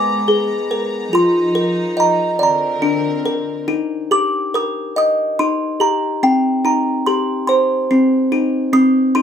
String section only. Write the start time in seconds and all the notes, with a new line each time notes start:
Already playing: G#3 B3 A#5
1.13 F3 D#4
2.41 D3 C4 A#4